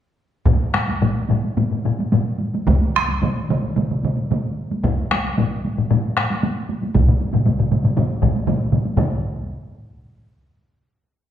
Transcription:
0.46 taiko, taiko low-mid, taiko high
0.74 taiko rim, taiko high
0.88 taiko high
1.02 taiko low-mid, taiko high
1.29 taiko low-mid, taiko high
1.44 taiko high
1.57 taiko low-mid, taiko high
1.71 taiko low-mid
1.85 taiko low-mid, taiko high
1.99 taiko high
2.13 taiko low-mid, taiko high
2.41 taiko high
2.54 taiko high
2.67 taiko, taiko mid, taiko high
2.96 taiko rim
3.08 taiko high
3.22 taiko mid, taiko high
3.49 taiko mid, taiko high
3.62 taiko high
3.76 taiko mid, taiko high
3.91 taiko mid
4.03 taiko mid, taiko high
4.17 taiko high
4.31 taiko mid, taiko high
4.71 taiko high
4.84 taiko, taiko low-mid, taiko high
5.11 taiko rim, taiko high
5.24 taiko high
5.38 taiko low-mid, taiko high
5.65 taiko high
5.78 taiko low-mid, taiko high
5.91 taiko low-mid, taiko high
6.17 taiko rim, taiko high
6.30 taiko high
6.43 taiko high
6.69 taiko high
6.82 taiko high
6.94 taiko, taiko low-mid, taiko mid, taiko high
7.08 taiko low-mid, taiko mid
7.20 taiko high
7.33 taiko low-mid, taiko mid, taiko high
7.46 taiko low-mid, taiko mid, taiko high
7.59 taiko low-mid, taiko mid
7.71 taiko low-mid, taiko mid, taiko high
7.84 taiko low-mid, taiko mid, taiko high
7.97 taiko low-mid, taiko mid, taiko high
8.22 taiko, taiko low-mid, taiko mid, taiko high
8.35 taiko high
8.47 taiko low-mid, taiko mid, taiko high
8.72 taiko low-mid, taiko mid, taiko high
8.85 taiko high
8.97 taiko, taiko low-mid, taiko mid, taiko high

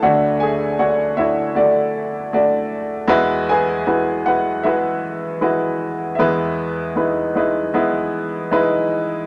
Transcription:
0.03 D2 D3 A3 D4 F#4 A4 C#5 F#5
0.40 G#4 G#5
0.79 A3 D4 F#4 C#5 F#5
1.17 A3 D4 E4 F#4 C#5 E5
1.55 A3 D4 F#4 D5
1.59 F#4 A4
2.33 A3 D4 F#4 D5
3.08 E2 E3 G#3 E4 F#4 B4
3.49 G#4 B4 G#5
3.87 G#3 E4 F#4 B4
4.26 G#3 E4 F#4 B4 F#5
4.63 G#3 E4 F#4 G#4 B4 E5
5.41 G#3 E4 F#4 B4
6.15 G#3 B3 E5
6.19 E2 E3 E4 G#4 B4
6.96 G#3 D#4 E4 B4
7.35 G#3 D#4 E4 B4
7.74 G#3 B3 E4 B4
8.51 G#3 D#4 E4 B4

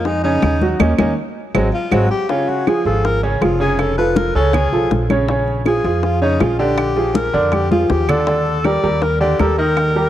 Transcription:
Already playing: F2
0.05 G#3 D#4 G#4, high bongo, high conga
0.24 C#3 C#4 D#4, high conga
0.43 D#2, high bongo, low bongo, high conga, claves
0.62 F#3 F#4, high conga
0.80 D#2 A#3 C#4 D#4, low bongo, high conga, claves
0.99 D#2 A#3 C#4 D#4, low bongo, high conga, claves
1.55 G#1 F#3 G#3 C4, low bongo, high conga, claves
1.74 F4
1.92 G#1 F#3 G#3 C4 F#4, low bongo, high conga, claves
2.11 G4
2.29 C#3 C#4 F4 C#5, high bongo, high conga
2.48 F#4, high conga
2.67 F3 F4 G#4, high bongo, high conga, claves
2.85 G#1 F3 F4 G#4 A4, high conga
3.05 A#4, high bongo, high conga
3.23 C#3 C#4 C#5, high conga
3.41 F1 F3 F4 G#4, high bongo, low bongo, high conga, claves
3.60 C#3 C#4 G#4 C#5, high conga
3.79 A4, high bongo, high conga, claves
3.98 F3 F4 A4 B4, high bongo, high conga
4.16 A#4, high bongo, high conga
4.35 C#2 C#3 C#4 A4 C#5
4.53 G#4, high bongo, high conga, low conga, claves
4.72 B1 F3 F4 A4, high bongo, high conga
4.91 A#1, high bongo, low bongo, high conga
5.10 C#3 C#4 C#5, high bongo, high conga, claves
5.28 C#3 C#4 C#5, high bongo, high conga
5.48 high conga
5.65 F3 F4 G#4, high bongo, high conga, claves
5.84 F2 F3 F4 G#4, high conga
6.03 F4, high bongo, high conga
6.21 C#3 C#4 D#4 C#5, high conga
6.40 A#1 F3 F4 G#4, high bongo, low bongo, high conga, claves
6.59 D3 D4 G4 D5, high conga
6.77 high bongo, high conga, claves
6.96 F3 F4 G#4, high bongo, high conga
7.15 A#4, high bongo, high conga
7.34 F2 D3 D4 D5
7.52 G4, high bongo, high conga, claves
7.71 F3 F4 G#4, high bongo, high conga
7.90 D#2 G4, high bongo, low bongo
8.09 D3 D4 A4 D5, high bongo, low conga, claves
8.27 D3 D4 D5, high bongo, high conga
8.47 high conga
8.65 G3 G4 A#4 D5, high bongo, high conga, claves
8.84 D#2 G3 G4 A#4, high conga
9.02 A#4, high bongo, high conga
9.21 D3 D4 G4 D5, high conga
9.39 D#2 G3 G4 A4 A#4, high bongo, low bongo, high conga, claves
9.58 D#3 D#4 A#4 D#5, high conga
9.77 high bongo, high conga, claves
9.96 G3 G4 A#4, high bongo, high conga

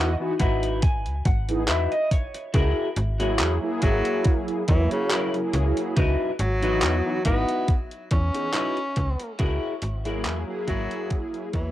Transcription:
Already playing: E2 E3 B3 F#4 D#5
0.20 E3 B3 D#4 F#4
0.39 G#1 D#4 E4 F#4 B4 F#5, kick, closed hi-hat
0.63 closed hi-hat
0.82 G#5, kick, closed hi-hat
1.06 C#2, closed hi-hat
1.25 G#1 F#5, muted clean electric guitar stroke, kick, closed hi-hat
1.48 E3 B3 D#4 G#4, closed hi-hat
1.67 E2 D#4 E4 F#4 B4 E5, clap, closed hi-hat
1.92 D#5, closed hi-hat
2.11 C#5, muted clean electric guitar stroke, kick, closed hi-hat
2.34 muted clean electric guitar stroke, closed hi-hat
2.54 C#2 E4 F#4 G#4 A#4, kick, closed hi-hat
2.96 G#1, closed hi-hat
3.20 F#3 A#3 E4 F#4 G#4 C#5, closed hi-hat
3.39 E2, clap, closed hi-hat
3.61 F#3 A#3 E4 G#4
3.82 G#1 F#3 E4 F#4 G#4 A#4, kick, closed hi-hat
4.05 closed hi-hat
4.25 kick, closed hi-hat
4.48 closed hi-hat
4.67 E2 E3 F#3 A#3 E4 C#5, muted clean electric guitar stroke, kick, closed hi-hat
4.91 C#3, closed hi-hat
5.10 E4 F#4 G#4 A#4, clap, closed hi-hat
5.34 F#3 A#3 E4 G#4, closed hi-hat
5.53 C#2, muted clean electric guitar stroke, closed hi-hat
5.77 muted clean electric guitar stroke, closed hi-hat
5.96 C#2 D#4 E4 F#4 B4, kick, closed hi-hat
6.39 G#1 F#3, closed hi-hat
6.62 E3 B3 D#4 E4 F#4 B4 D#5, closed hi-hat
6.82 E2, clap, closed hi-hat
7.05 E3 B3 D#4 F#4
7.25 G#1 B3 D#4 E4 F#4 B4, kick, closed hi-hat
7.49 closed hi-hat
7.68 kick, closed hi-hat
7.91 closed hi-hat
8.11 E2 C#4, muted clean electric guitar stroke, kick, closed hi-hat
8.33 E3 B3 D#4 G#4, closed hi-hat
8.53 D#4 E4 F#4 B4, clap, closed hi-hat
8.77 closed hi-hat
8.96 C#2, muted clean electric guitar stroke, kick, closed hi-hat
9.20 muted clean electric guitar stroke, closed hi-hat
9.39 C#2 E4 F#4 G#4 A#4, kick, closed hi-hat
9.82 G#1, closed hi-hat
10.05 F#3 A#3 E4 F#4 G#4 A#4, closed hi-hat
10.25 E2, clap, closed hi-hat
10.47 F#3 A#3 E4 G#4
10.67 G#1 F#3 E4 F#4 G#4 A#4, kick, closed hi-hat
10.91 closed hi-hat
11.10 kick, closed hi-hat
11.34 closed hi-hat
11.52 E2 E3 F#3 A#3 E4 C#5, muted clean electric guitar stroke, kick, closed hi-hat

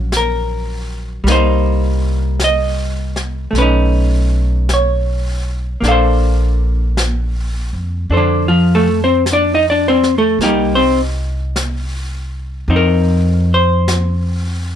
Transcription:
Already playing: A#1 D#3 F#3 C#4 F4
0.12 brush sweep, snare, hi-hat pedal
0.17 A#4
1.24 C2 G3 A#3, brush sweep, snare
1.30 D#4 C5
2.40 brush sweep, snare, hi-hat pedal
2.44 D#5
3.16 snare
3.51 B1 A3
3.55 C#4 B4, brush sweep, snare
3.62 D#4
4.69 brush sweep, snare, hi-hat pedal
4.74 C#5
5.81 A#1 A#3, brush sweep, snare
5.85 D4 A4 F5
5.91 C5
6.97 brush sweep, snare, hi-hat pedal
7.73 F2
8.10 F2 D4 A4 C5, brush sweep
8.17 D3 D4
8.48 F3 F4
8.75 A3 A4
9.04 C4 C5
9.26 brush sweep, snare, hi-hat pedal
9.33 D4 D5
9.54 D#4 D#5
9.70 D4 D5
9.88 C4 C5
10.03 snare
10.18 A3 A4
10.38 C2 A#3, brush sweep, snare
10.43 G3 D#4 G4
10.75 C4 C5
11.56 brush sweep, snare, hi-hat pedal
12.68 F2 F3 C4 D#4, brush sweep
12.76 A#4
13.54 C5
13.88 brush sweep, snare, hi-hat pedal

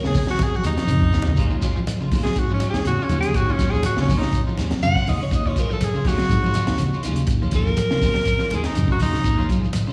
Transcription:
0.03 D#2 C#3 G#4, snare, shekere
0.15 G#4, kick, snare, open hi-hat, high conga, low conga, shekere
0.27 F#3 F#4, snare, shekere
0.39 kick, snare, closed hi-hat, high conga, shekere
0.44 G#4
0.52 F3, shekere
0.56 F#4, high conga
0.64 D#2 D#4, closed hi-hat, low conga, shekere
0.73 low conga
0.77 D#3, snare, closed hi-hat, shekere
0.82 high conga
0.87 F2 C#3, closed hi-hat, shekere
0.99 kick, low conga, shekere
1.13 D#2 D#3, snare, shekere
1.22 low conga, shekere
1.27 C#3, floor tom, low conga
1.36 D#2 F#3 G#3 C#4 F4, kick, closed hi-hat, shekere
1.50 D#3 G#3 C#4 F4, shekere
1.62 F#3 G#3 C#4 F4, kick, snare, closed hi-hat, shekere
1.76 F3, shekere
1.87 closed hi-hat, high conga, shekere
2.00 C#3 G#3 F4, muted clean electric guitar stroke, shekere
2.11 D#2 F#3 G#3 C#4 F4, kick, open hi-hat, high conga, low conga, shekere
2.23 F#3 G#4, muted fingered electric bass stroke, snare, shekere
2.36 G#2 F#4, kick, closed hi-hat, shekere
2.49 F3 G#3 C#4 F4, shekere
2.54 C#4
2.60 F#3 G#3 C#4, muted clean electric guitar stroke, closed hi-hat, high conga, shekere
2.70 D#2 D#3 G#4
2.74 snare, closed hi-hat, shekere
2.85 D#2 C#3 F#4, closed hi-hat, high conga, shekere
2.98 G#3 F4, muted clean electric guitar stroke, muted fingered electric bass stroke, shekere
3.04 C#4
3.09 D#2 D#3 F#3 G#3 C#4 F4, closed hi-hat, high conga, low conga, shekere
3.20 C#3 G#4, closed hi-hat
3.26 shekere
3.34 F#4, kick, closed hi-hat, shekere
3.47 D#3 G#3 C#4 F4, shekere
3.52 C#4
3.58 D#2 F#3 G#3 C#4 F4, kick, snare, closed hi-hat, shekere
3.71 D#2 F3 G#4, shekere
3.83 F#4, closed hi-hat, high conga, low conga, shekere
3.97 D#2 C#3 G#3 C#4 F4, snare, shekere
4.09 F#3 G#3 C#4 F4, kick, open hi-hat, high conga, low conga, shekere
4.18 F#3 D#4, snare
4.23 high conga, shekere
4.33 kick, closed hi-hat, shekere
4.47 F3 G#3 C#4 F4, shekere
4.57 D#2 F#3 G#3 C#4, muted clean electric guitar stroke, snare, closed hi-hat, high conga, shekere
4.71 D#3, snare, closed hi-hat, shekere
4.82 F#2 C#3 F#5, closed hi-hat, high conga, shekere
4.95 G#3 C#4 F4, kick, snare, shekere
5.07 D#2 D#3 F#3 G#3 C#4 F4 D#5, open hi-hat, high conga, low conga, shekere
5.21 C#3 C#5, shekere
5.31 D#2 D#5, kick, closed hi-hat, shekere
5.46 G#3 C#4 F4 C#5, muted clean electric guitar stroke, shekere
5.56 F#3 G#3 C#4 F4, kick, closed hi-hat, shekere
5.60 A#4
5.70 F3 A4, shekere
5.81 G#4, closed hi-hat, high conga, low conga, shekere
5.94 C#3 G#3 C#4 F4, shekere
6.05 D#2 F#3 G#3 C#4 F4 F#4, kick, open hi-hat, high conga, low conga, shekere
6.18 F#3, muted fingered electric bass stroke, snare, shekere
6.29 G#2, kick, closed hi-hat, shekere
6.43 F3 G#3 C#4 F4, high conga, shekere
6.54 F#3 G#3 C#4 F4, closed hi-hat, high conga, low conga, shekere
6.67 D#2 D#3, snare, closed hi-hat, shekere
6.78 D#2 C#3, closed hi-hat, high conga, shekere
6.93 G#3 C#4 F4, muted fingered electric bass stroke, shekere
7.03 D#2 D#3 F#3 G#3 C#4 F4, closed hi-hat, low conga, shekere
7.16 C#3, closed hi-hat, shekere
7.27 kick, closed hi-hat, shekere
7.42 D#3 G#3 C#4 F4, high conga, shekere
7.51 D#2 F#3 G#3 C#4 F4, kick, closed hi-hat, shekere
7.56 A#4
7.67 D#2 F3, shekere
7.77 closed hi-hat, high conga, shekere
7.91 D#2 C#3 G#3 C#4 F4, snare, shekere
8.01 F#3 G#3 C#4 F4, kick, open hi-hat, high conga, low conga, shekere
8.14 F#3, snare, high conga, shekere
8.25 kick, closed hi-hat, shekere
8.39 F3 G#3 C#4 F4, snare, shekere
8.50 D#2 F#3 G#3 C#4 F4, closed hi-hat, high conga, low conga, shekere
8.55 G#4
8.63 D#3 D#4, snare, closed hi-hat, shekere
8.74 F#2 C#3, closed hi-hat, high conga, shekere
8.88 G#3 C#4 F4 F#4, kick, shekere
8.99 D#2 D#3 F#3 G#3 C#4 D#4 F4, open hi-hat, high conga, low conga, shekere
9.13 C#3, snare, shekere
9.17 muted fingered electric bass stroke
9.24 D#2, kick, closed hi-hat, shekere
9.38 D#3 G#3 C#4 F4, high conga, shekere
9.49 F#3 G#3 C#4 F4, kick, closed hi-hat, shekere
9.62 F3, shekere
9.73 closed hi-hat, high conga, low conga, shekere
9.87 C#3 G#3 C#4 F4

